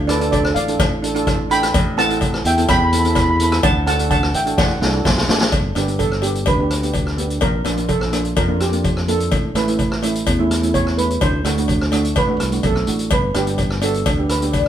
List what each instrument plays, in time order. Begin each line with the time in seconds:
Already playing: fingered electric bass D2
0.07 steel pan D4 F4 A4 B4 D5, cross-stick, closed hi-hat
0.20 steel pan D4 F4 A4, closed hi-hat
0.31 steel pan A4 D5, kick, closed hi-hat, cowbell
0.45 cross-stick
0.55 fingered electric bass A1, steel pan D5 F5, closed hi-hat
0.67 steel pan D4 F4 A4, closed hi-hat
0.79 fingered electric bass A1, kick, cross-stick, closed hi-hat, cowbell
1.02 steel pan D4 F4 A4, closed hi-hat
1.15 steel pan D4 F4 A4, closed hi-hat
1.27 kick, cross-stick, closed hi-hat, cowbell
1.50 steel pan D4 F4 A4 G5 B5, closed hi-hat
1.63 cross-stick, closed hi-hat
1.74 fingered electric bass A1, kick, closed hi-hat, cowbell
1.97 steel pan C4 E4 A4 F#5 A5, cross-stick, closed hi-hat
2.09 steel pan C4 E4 A4, closed hi-hat
2.21 kick, closed hi-hat, cowbell
2.34 cross-stick
2.45 fingered electric bass E2, steel pan E5 G5, closed hi-hat
2.57 steel pan C4 E4 A4, closed hi-hat
2.69 fingered electric bass E2, steel pan G5 B5, kick, cross-stick, closed hi-hat, cowbell
2.77 steel pan B5
2.85 steel pan B5
2.92 steel pan C4 E4 A4 B5, closed hi-hat
3.00 steel pan B5
3.04 steel pan C4 E4 A4, closed hi-hat
3.15 steel pan B5, kick, cross-stick, closed hi-hat, cowbell
3.22 steel pan B5
3.30 steel pan B5
3.36 steel pan C4 B5, closed hi-hat
3.41 steel pan E4 A4 B5
3.51 steel pan B5, cross-stick, closed hi-hat
3.63 fingered electric bass D2, steel pan F#5 A5, kick, closed hi-hat, cowbell
3.86 steel pan D4 F#4 A4 F#5 A5, cross-stick, closed hi-hat
3.99 steel pan D4 F#4 A4, closed hi-hat
4.10 steel pan F#5 A5, kick, closed hi-hat, cowbell
4.23 cross-stick
4.33 fingered electric bass A1, steel pan E5 G5, closed hi-hat
4.46 steel pan D4 F#4 A4, closed hi-hat
4.58 fingered electric bass A1, steel pan D5 F#5, kick, snare, cowbell
4.80 fingered electric bass C2, steel pan D4 F#4 A4, snare
4.93 steel pan D4 F#4 A4
5.05 fingered electric bass B1, kick, snare, cowbell
5.18 snare
5.28 fingered electric bass A1, steel pan D4 F#4 A4, snare
5.41 snare
5.52 fingered electric bass G1, kick, closed hi-hat, cowbell
5.75 fingered electric bass G1, steel pan B3 D4 G4, cross-stick, closed hi-hat, cowbell
5.88 steel pan B3 D4 G4, closed hi-hat
5.99 steel pan A4, kick, closed hi-hat, cowbell
6.12 cross-stick
6.22 steel pan B3 D4 G4, closed hi-hat, cowbell
6.35 closed hi-hat
6.46 fingered electric bass D2, steel pan B4, kick, closed hi-hat, cowbell
6.59 steel pan B3 D4 G4
6.71 cross-stick, closed hi-hat
6.83 steel pan B3 D4 G4, closed hi-hat
6.94 kick, closed hi-hat, cowbell
7.07 cross-stick
7.17 steel pan B3 D4 G4, closed hi-hat
7.30 closed hi-hat
7.41 fingered electric bass A#1, steel pan A#4, kick, closed hi-hat, cowbell
7.64 fingered electric bass A#1, steel pan A#3 D4 F4, cross-stick, closed hi-hat, cowbell
7.77 steel pan A#3 D4 F4, closed hi-hat
7.89 steel pan A4, kick, closed hi-hat, cowbell
8.01 cross-stick
8.12 steel pan A#3 D4 F4, cross-stick, closed hi-hat, cowbell
8.25 closed hi-hat
8.36 fingered electric bass F2, steel pan A#4, kick, closed hi-hat, cowbell
8.48 steel pan A#3 D4 F4
8.60 steel pan G4, cross-stick, closed hi-hat
8.72 steel pan A#3 D4 F4, closed hi-hat
8.84 kick, closed hi-hat, cowbell
8.97 cross-stick
9.08 steel pan A#3 D4 F4 A4, closed hi-hat
9.20 closed hi-hat
9.32 fingered electric bass A1, kick, closed hi-hat, cowbell
9.55 fingered electric bass A1, steel pan A3 C#4 E4 B4, cross-stick, closed hi-hat, cowbell
9.67 steel pan A3 C#4 E4, closed hi-hat
9.79 kick, closed hi-hat, cowbell
9.92 cross-stick
10.03 steel pan A3 C#4 E4, closed hi-hat, cowbell
10.15 closed hi-hat
10.27 fingered electric bass E2, kick, closed hi-hat, cowbell
10.39 steel pan A3 C#4 E4
10.51 cross-stick, closed hi-hat
10.62 steel pan A3 C#4 E4, closed hi-hat
10.74 steel pan C#5, kick, closed hi-hat, cowbell
10.87 cross-stick
10.97 steel pan A3 C#4 E4 B4, closed hi-hat
11.11 closed hi-hat
11.21 fingered electric bass D2, steel pan C5, kick, closed hi-hat, cowbell
11.45 fingered electric bass D2, steel pan A3 D4 F#4, cross-stick, closed hi-hat, cowbell
11.57 steel pan A3 D4 F#4, closed hi-hat
11.68 kick, closed hi-hat, cowbell
11.81 cross-stick
11.92 steel pan A3 D4 F#4, cross-stick, closed hi-hat, cowbell
12.05 closed hi-hat
12.16 fingered electric bass A1, steel pan B4, kick, closed hi-hat, cowbell
12.28 steel pan A3 D4 F#4
12.40 fingered electric bass C2, cross-stick, closed hi-hat
12.52 steel pan A3 D4 F#4, closed hi-hat
12.63 fingered electric bass B1, steel pan A4, kick, closed hi-hat, cowbell
12.76 cross-stick
12.86 fingered electric bass A1, steel pan A3 D4 F#4, closed hi-hat
12.99 closed hi-hat
13.10 fingered electric bass G1, steel pan B4, kick, closed hi-hat, cowbell
13.34 fingered electric bass G1, steel pan B3 D4 G4, cross-stick, closed hi-hat, cowbell
13.47 steel pan B3 D4 G4, closed hi-hat
13.58 kick, closed hi-hat, cowbell
13.70 cross-stick
13.81 steel pan B3 D4 F#4 A4, closed hi-hat, cowbell
13.94 closed hi-hat
14.06 fingered electric bass D2, kick, closed hi-hat, cowbell
14.17 steel pan B3 D4 G4
14.29 steel pan B4, cross-stick, closed hi-hat
14.41 steel pan B3 D4 G4, closed hi-hat
14.52 shakuhachi D5, kick, closed hi-hat, cowbell